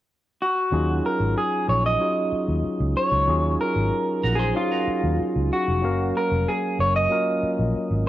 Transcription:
0.42 F#4
0.72 D#2 F#3 C#4 D#4 F4 G#4
1.06 A#4
1.20 G#1
1.38 G#4
1.68 A#1 C#5
1.86 D#5
2.00 F#3 C#4 D#4 F4 G#4
2.32 muted fingered electric bass stroke
2.48 D#2
2.64 muted fingered electric bass stroke
2.80 C#2
2.97 C#5
3.12 C#2
3.27 D#2 F#3 C#4 D#4 F4 G#4
3.61 A#4
3.76 G#1
4.23 A#1 F#4 A#4
4.35 G#4 C5
4.40 G#4
4.54 F#3 C#4 D#4 F4 G#4 F5
4.71 F#4 A#4
4.87 muted fingered electric bass stroke
5.03 D#2
5.20 muted fingered electric bass stroke
5.36 C#2
5.53 F#4
5.68 F1
5.82 F#1 F#3 A#3 C#4 A#4 F5
6.17 A#4
6.31 F1
6.48 G#4
6.79 F#1 C#5
6.96 D#5
7.09 F#3 A#3 C#4 F4 A#4
7.43 muted fingered electric bass stroke
7.59 A#1
7.75 muted fingered electric bass stroke
7.91 G#1

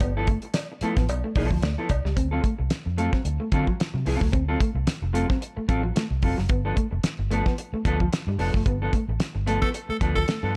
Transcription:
0.00 G1 B3, muted clean electric guitar stroke, kick, closed hi-hat, cowbell
0.17 F3 B3 E4 A4
0.27 A3, muted clean electric guitar stroke, kick, closed hi-hat
0.42 muted clean electric guitar stroke, closed hi-hat
0.54 muted clean electric guitar stroke, snare, closed hi-hat, cowbell
0.72 muted clean electric guitar stroke
0.81 F3 A3 B3 E4 A4, muted fingered electric bass stroke, closed hi-hat
0.97 A1 B3, muted clean electric guitar stroke, kick, snare, closed hi-hat
1.09 B1, muted clean electric guitar stroke, closed hi-hat, cowbell
1.24 A3, muted clean electric guitar stroke
1.35 B1 F3 B3 E4 A4, muted clean electric guitar stroke, kick, open hi-hat, cowbell
1.51 D2 F3, muted clean electric guitar stroke, kick
1.62 D2 A3, muted clean electric guitar stroke, snare, closed hi-hat, cowbell
1.78 F3 B3 E4 A4, muted clean electric guitar stroke
1.89 C2, muted clean electric guitar stroke, kick, closed hi-hat, cowbell
2.05 C#2 G3, muted clean electric guitar stroke, snare
2.16 D2 C4, muted clean electric guitar stroke, kick, closed hi-hat
2.31 F#3 C4 F4 A4
2.43 A3, muted clean electric guitar stroke, kick, closed hi-hat
2.58 C2, muted clean electric guitar stroke
2.70 muted fingered electric bass stroke, muted clean electric guitar stroke, snare, closed hi-hat
2.86 F2, muted clean electric guitar stroke
2.97 F#3 A3 C4 F4 A4, closed hi-hat
3.12 C4, muted clean electric guitar stroke, kick, snare
3.25 D2, muted clean electric guitar stroke, closed hi-hat
3.40 A3, muted clean electric guitar stroke
3.52 D3 F#3 C4 F4 A4, muted clean electric guitar stroke, kick, closed hi-hat
3.67 F3, muted clean electric guitar stroke, kick
3.80 snare, closed hi-hat
3.94 C3 F#3, muted clean electric guitar stroke
4.06 C2 F#3 C4 F4 A4, muted clean electric guitar stroke, open hi-hat
4.21 C#2 A3, muted clean electric guitar stroke, kick, snare
4.32 D2 C4, muted clean electric guitar stroke, kick, closed hi-hat
4.48 F#3 C4 F4 A4
4.60 A3, kick, closed hi-hat
4.75 C2, muted clean electric guitar stroke
4.87 muted fingered electric bass stroke, muted clean electric guitar stroke, snare, closed hi-hat
5.02 F1, muted clean electric guitar stroke
5.13 F#3 A3 C4 F4 A4, closed hi-hat
5.29 C4, muted clean electric guitar stroke, kick, snare
5.41 muted clean electric guitar stroke, closed hi-hat
5.56 A3, muted clean electric guitar stroke, muted fingered electric bass stroke
5.68 A1 F#3 C4 F4 A4, muted clean electric guitar stroke, kick, closed hi-hat
5.83 F3, muted clean electric guitar stroke
5.96 A3, muted clean electric guitar stroke, snare, closed hi-hat
6.11 C2, muted clean electric guitar stroke
6.22 F1 F#3 C4 F4 A4, kick, open hi-hat
6.38 F#1 F#3, muted clean electric guitar stroke, snare
6.49 G1 B3, muted clean electric guitar stroke, kick, closed hi-hat
6.65 F3 B3 D4 A4
6.76 A3, muted clean electric guitar stroke, kick, closed hi-hat
6.91 F1, muted clean electric guitar stroke
7.03 muted clean electric guitar stroke, muted fingered electric bass stroke, snare, closed hi-hat
7.19 G1, muted clean electric guitar stroke
7.31 F3 A3 B3 D4 A4, closed hi-hat
7.46 B3, muted clean electric guitar stroke, kick, snare
7.58 muted clean electric guitar stroke, closed hi-hat
7.73 A3, muted fingered electric bass stroke, muted clean electric guitar stroke
7.85 D2 F3 B3 D4 A4, muted clean electric guitar stroke, kick, closed hi-hat
8.00 F3, muted clean electric guitar stroke, kick
8.13 snare, closed hi-hat
8.27 G2 G3, muted clean electric guitar stroke
8.38 F1 F3 B3 D4 A4, muted clean electric guitar stroke, open hi-hat
8.54 F#1 A3, muted clean electric guitar stroke, kick, snare
8.66 G1 B3, muted clean electric guitar stroke, kick, closed hi-hat
8.82 F3 B3 D4 A4
8.93 A3, muted clean electric guitar stroke, kick, closed hi-hat
9.08 A1, muted clean electric guitar stroke
9.20 muted clean electric guitar stroke, snare, closed hi-hat
9.35 G1, muted clean electric guitar stroke
9.46 F3 A3 B3 D4 A4, closed hi-hat
9.62 B3 A4, muted clean electric guitar stroke, kick, snare
9.74 muted clean electric guitar stroke, closed hi-hat
9.88 A3 A4, muted clean electric guitar stroke, muted fingered electric bass stroke
10.01 D2 F3 B3 D4 A4, muted clean electric guitar stroke, kick, closed hi-hat
10.15 F3 A4, muted clean electric guitar stroke, kick
10.28 A3, muted clean electric guitar stroke, snare, closed hi-hat
10.43 G2 F3 B3 D4 A4, muted clean electric guitar stroke

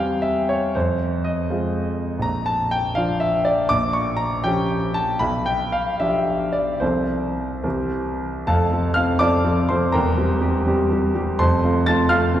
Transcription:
Already playing: E2 G3 F5 G5 G#5 A#5
0.00 C4 G4
0.22 E5
0.49 C#5
0.75 F2 C5
1.24 D#5
1.50 G#3 C4 F4
2.19 A#1 A#5
2.46 A5
2.71 G5
2.95 F3 D4 F4 F5
3.20 E5
3.45 D5
3.69 A#1 D6
3.93 C#6
4.17 A#5
4.44 F3 C#4 G4 G5
4.94 A5
5.19 B1 B5
5.46 G5
5.72 F5
6.00 F3 D4 G4 E5
6.52 D5
6.80 C2 F3 C4 A4 C5
7.63 C2 E3 C4 G4
8.47 F1 F2 A4 F5 A5
8.71 F3 C4 A4
8.94 F3 C4 A4 F5 F6
9.19 F3 C4 A4 D5 A5 D6
9.44 F3 C4 A4
9.69 F3 C4 A4 C5 C6
9.92 E1 E2 A#4 G5 A#5
10.17 G3 C4 G4
10.40 G3 C4 G4
10.66 G3 C4 G4
10.91 G3 C4 G4
11.15 G3 C4 G4
11.38 F1 F2 C5 A5 C6
11.63 A3 C4 F4
11.86 A3 C4 F4 A5 A6
12.09 A3 C4 F4 F5 C6 F6
12.34 A3 C4 F4

